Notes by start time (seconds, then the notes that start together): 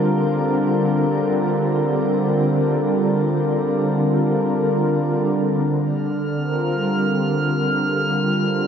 Already playing: D3 G3 C4 D4 F4 A#4
5.83 F6
6.36 C4
6.41 A#4
6.49 F4
6.69 G3